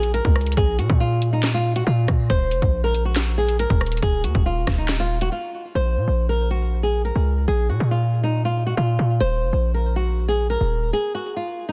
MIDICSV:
0, 0, Header, 1, 4, 480
1, 0, Start_track
1, 0, Key_signature, -5, "minor"
1, 0, Tempo, 431655
1, 636, Time_signature, 4, 2, 24, 8
1, 13034, End_track
2, 0, Start_track
2, 0, Title_t, "Nylon-string guitar"
2, 0, Program_c, 0, 24
2, 0, Note_on_c, 0, 68, 80
2, 122, Note_off_c, 0, 68, 0
2, 156, Note_on_c, 0, 70, 81
2, 607, Note_off_c, 0, 70, 0
2, 635, Note_on_c, 0, 68, 99
2, 842, Note_off_c, 0, 68, 0
2, 875, Note_on_c, 0, 66, 70
2, 1082, Note_off_c, 0, 66, 0
2, 1115, Note_on_c, 0, 65, 85
2, 1454, Note_off_c, 0, 65, 0
2, 1477, Note_on_c, 0, 63, 80
2, 1683, Note_off_c, 0, 63, 0
2, 1715, Note_on_c, 0, 65, 92
2, 1922, Note_off_c, 0, 65, 0
2, 1956, Note_on_c, 0, 66, 77
2, 2059, Note_off_c, 0, 66, 0
2, 2074, Note_on_c, 0, 65, 85
2, 2526, Note_off_c, 0, 65, 0
2, 2555, Note_on_c, 0, 72, 122
2, 3119, Note_off_c, 0, 72, 0
2, 3157, Note_on_c, 0, 70, 77
2, 3363, Note_off_c, 0, 70, 0
2, 3395, Note_on_c, 0, 66, 83
2, 3734, Note_off_c, 0, 66, 0
2, 3757, Note_on_c, 0, 68, 78
2, 3963, Note_off_c, 0, 68, 0
2, 3998, Note_on_c, 0, 70, 79
2, 4448, Note_off_c, 0, 70, 0
2, 4478, Note_on_c, 0, 68, 97
2, 4684, Note_off_c, 0, 68, 0
2, 4714, Note_on_c, 0, 66, 80
2, 4922, Note_off_c, 0, 66, 0
2, 4958, Note_on_c, 0, 65, 79
2, 5296, Note_off_c, 0, 65, 0
2, 5318, Note_on_c, 0, 63, 83
2, 5524, Note_off_c, 0, 63, 0
2, 5557, Note_on_c, 0, 65, 91
2, 5763, Note_off_c, 0, 65, 0
2, 5799, Note_on_c, 0, 66, 83
2, 5901, Note_off_c, 0, 66, 0
2, 5915, Note_on_c, 0, 65, 86
2, 6367, Note_off_c, 0, 65, 0
2, 6398, Note_on_c, 0, 72, 109
2, 6961, Note_off_c, 0, 72, 0
2, 6995, Note_on_c, 0, 70, 72
2, 7202, Note_off_c, 0, 70, 0
2, 7235, Note_on_c, 0, 66, 83
2, 7574, Note_off_c, 0, 66, 0
2, 7597, Note_on_c, 0, 68, 76
2, 7803, Note_off_c, 0, 68, 0
2, 7837, Note_on_c, 0, 70, 75
2, 8288, Note_off_c, 0, 70, 0
2, 8316, Note_on_c, 0, 68, 94
2, 8523, Note_off_c, 0, 68, 0
2, 8556, Note_on_c, 0, 66, 68
2, 8763, Note_off_c, 0, 66, 0
2, 8798, Note_on_c, 0, 65, 78
2, 9135, Note_off_c, 0, 65, 0
2, 9157, Note_on_c, 0, 63, 79
2, 9363, Note_off_c, 0, 63, 0
2, 9396, Note_on_c, 0, 65, 88
2, 9603, Note_off_c, 0, 65, 0
2, 9635, Note_on_c, 0, 66, 75
2, 9739, Note_off_c, 0, 66, 0
2, 9755, Note_on_c, 0, 65, 81
2, 10207, Note_off_c, 0, 65, 0
2, 10235, Note_on_c, 0, 72, 107
2, 10800, Note_off_c, 0, 72, 0
2, 10835, Note_on_c, 0, 70, 72
2, 11042, Note_off_c, 0, 70, 0
2, 11076, Note_on_c, 0, 66, 78
2, 11414, Note_off_c, 0, 66, 0
2, 11437, Note_on_c, 0, 68, 74
2, 11643, Note_off_c, 0, 68, 0
2, 11675, Note_on_c, 0, 70, 77
2, 12127, Note_off_c, 0, 70, 0
2, 12157, Note_on_c, 0, 68, 94
2, 12363, Note_off_c, 0, 68, 0
2, 12394, Note_on_c, 0, 66, 76
2, 12602, Note_off_c, 0, 66, 0
2, 12637, Note_on_c, 0, 65, 73
2, 12975, Note_off_c, 0, 65, 0
2, 12995, Note_on_c, 0, 63, 80
2, 13034, Note_off_c, 0, 63, 0
2, 13034, End_track
3, 0, Start_track
3, 0, Title_t, "808-style bass"
3, 0, Program_c, 1, 38
3, 0, Note_on_c, 1, 34, 105
3, 231, Note_off_c, 1, 34, 0
3, 277, Note_on_c, 1, 37, 106
3, 622, Note_off_c, 1, 37, 0
3, 636, Note_on_c, 1, 34, 110
3, 876, Note_on_c, 1, 46, 99
3, 893, Note_off_c, 1, 34, 0
3, 990, Note_off_c, 1, 46, 0
3, 996, Note_on_c, 1, 46, 106
3, 2033, Note_off_c, 1, 46, 0
3, 2076, Note_on_c, 1, 46, 106
3, 2306, Note_off_c, 1, 46, 0
3, 2316, Note_on_c, 1, 46, 106
3, 2546, Note_off_c, 1, 46, 0
3, 2556, Note_on_c, 1, 27, 108
3, 2797, Note_on_c, 1, 29, 98
3, 2813, Note_off_c, 1, 27, 0
3, 2910, Note_off_c, 1, 29, 0
3, 2916, Note_on_c, 1, 34, 106
3, 4072, Note_off_c, 1, 34, 0
3, 4116, Note_on_c, 1, 27, 101
3, 4462, Note_off_c, 1, 27, 0
3, 4476, Note_on_c, 1, 27, 109
3, 4716, Note_on_c, 1, 39, 101
3, 4732, Note_off_c, 1, 27, 0
3, 4830, Note_off_c, 1, 39, 0
3, 4836, Note_on_c, 1, 27, 103
3, 5182, Note_off_c, 1, 27, 0
3, 5196, Note_on_c, 1, 27, 110
3, 5887, Note_off_c, 1, 27, 0
3, 6397, Note_on_c, 1, 34, 106
3, 6637, Note_on_c, 1, 46, 96
3, 6653, Note_off_c, 1, 34, 0
3, 6750, Note_off_c, 1, 46, 0
3, 6757, Note_on_c, 1, 34, 103
3, 7912, Note_off_c, 1, 34, 0
3, 7957, Note_on_c, 1, 37, 98
3, 8302, Note_off_c, 1, 37, 0
3, 8317, Note_on_c, 1, 34, 107
3, 8557, Note_on_c, 1, 46, 95
3, 8573, Note_off_c, 1, 34, 0
3, 8670, Note_off_c, 1, 46, 0
3, 8677, Note_on_c, 1, 46, 104
3, 9713, Note_off_c, 1, 46, 0
3, 9756, Note_on_c, 1, 46, 106
3, 9987, Note_off_c, 1, 46, 0
3, 9996, Note_on_c, 1, 46, 104
3, 10227, Note_off_c, 1, 46, 0
3, 10236, Note_on_c, 1, 27, 102
3, 10477, Note_on_c, 1, 29, 98
3, 10493, Note_off_c, 1, 27, 0
3, 10590, Note_off_c, 1, 29, 0
3, 10596, Note_on_c, 1, 34, 99
3, 11752, Note_off_c, 1, 34, 0
3, 11795, Note_on_c, 1, 27, 98
3, 12141, Note_off_c, 1, 27, 0
3, 13034, End_track
4, 0, Start_track
4, 0, Title_t, "Drums"
4, 36, Note_on_c, 9, 42, 80
4, 147, Note_off_c, 9, 42, 0
4, 156, Note_on_c, 9, 42, 76
4, 267, Note_off_c, 9, 42, 0
4, 276, Note_on_c, 9, 36, 101
4, 388, Note_off_c, 9, 36, 0
4, 396, Note_on_c, 9, 37, 90
4, 396, Note_on_c, 9, 42, 43
4, 456, Note_off_c, 9, 42, 0
4, 456, Note_on_c, 9, 42, 52
4, 507, Note_off_c, 9, 37, 0
4, 516, Note_off_c, 9, 42, 0
4, 516, Note_on_c, 9, 42, 62
4, 576, Note_off_c, 9, 42, 0
4, 576, Note_on_c, 9, 42, 73
4, 636, Note_on_c, 9, 36, 121
4, 637, Note_off_c, 9, 42, 0
4, 637, Note_on_c, 9, 42, 83
4, 747, Note_off_c, 9, 36, 0
4, 748, Note_off_c, 9, 42, 0
4, 875, Note_on_c, 9, 42, 90
4, 986, Note_off_c, 9, 42, 0
4, 996, Note_on_c, 9, 36, 99
4, 1107, Note_off_c, 9, 36, 0
4, 1355, Note_on_c, 9, 42, 96
4, 1466, Note_off_c, 9, 42, 0
4, 1590, Note_on_c, 9, 39, 88
4, 1596, Note_on_c, 9, 42, 84
4, 1597, Note_on_c, 9, 38, 110
4, 1701, Note_off_c, 9, 39, 0
4, 1707, Note_off_c, 9, 42, 0
4, 1708, Note_off_c, 9, 38, 0
4, 1956, Note_on_c, 9, 42, 77
4, 2067, Note_off_c, 9, 42, 0
4, 2316, Note_on_c, 9, 36, 95
4, 2316, Note_on_c, 9, 37, 93
4, 2316, Note_on_c, 9, 42, 71
4, 2427, Note_off_c, 9, 36, 0
4, 2427, Note_off_c, 9, 37, 0
4, 2427, Note_off_c, 9, 42, 0
4, 2556, Note_on_c, 9, 36, 119
4, 2556, Note_on_c, 9, 42, 82
4, 2667, Note_off_c, 9, 36, 0
4, 2668, Note_off_c, 9, 42, 0
4, 2795, Note_on_c, 9, 42, 88
4, 2906, Note_off_c, 9, 42, 0
4, 2916, Note_on_c, 9, 36, 99
4, 3027, Note_off_c, 9, 36, 0
4, 3275, Note_on_c, 9, 42, 92
4, 3386, Note_off_c, 9, 42, 0
4, 3510, Note_on_c, 9, 39, 86
4, 3516, Note_on_c, 9, 42, 88
4, 3517, Note_on_c, 9, 38, 111
4, 3621, Note_off_c, 9, 39, 0
4, 3627, Note_off_c, 9, 42, 0
4, 3628, Note_off_c, 9, 38, 0
4, 3876, Note_on_c, 9, 42, 79
4, 3987, Note_off_c, 9, 42, 0
4, 3996, Note_on_c, 9, 42, 76
4, 4108, Note_off_c, 9, 42, 0
4, 4117, Note_on_c, 9, 36, 98
4, 4228, Note_off_c, 9, 36, 0
4, 4237, Note_on_c, 9, 37, 94
4, 4237, Note_on_c, 9, 42, 44
4, 4296, Note_off_c, 9, 42, 0
4, 4296, Note_on_c, 9, 42, 54
4, 4348, Note_off_c, 9, 37, 0
4, 4356, Note_off_c, 9, 42, 0
4, 4356, Note_on_c, 9, 42, 63
4, 4416, Note_off_c, 9, 42, 0
4, 4416, Note_on_c, 9, 42, 70
4, 4476, Note_off_c, 9, 42, 0
4, 4476, Note_on_c, 9, 36, 123
4, 4476, Note_on_c, 9, 42, 81
4, 4587, Note_off_c, 9, 36, 0
4, 4587, Note_off_c, 9, 42, 0
4, 4715, Note_on_c, 9, 42, 90
4, 4826, Note_off_c, 9, 42, 0
4, 4836, Note_on_c, 9, 36, 99
4, 4947, Note_off_c, 9, 36, 0
4, 5195, Note_on_c, 9, 42, 92
4, 5196, Note_on_c, 9, 36, 97
4, 5196, Note_on_c, 9, 37, 101
4, 5196, Note_on_c, 9, 38, 73
4, 5306, Note_off_c, 9, 42, 0
4, 5307, Note_off_c, 9, 36, 0
4, 5307, Note_off_c, 9, 37, 0
4, 5307, Note_off_c, 9, 38, 0
4, 5430, Note_on_c, 9, 39, 89
4, 5436, Note_on_c, 9, 42, 88
4, 5437, Note_on_c, 9, 38, 109
4, 5541, Note_off_c, 9, 39, 0
4, 5547, Note_off_c, 9, 42, 0
4, 5548, Note_off_c, 9, 38, 0
4, 5796, Note_on_c, 9, 42, 79
4, 5907, Note_off_c, 9, 42, 0
4, 13034, End_track
0, 0, End_of_file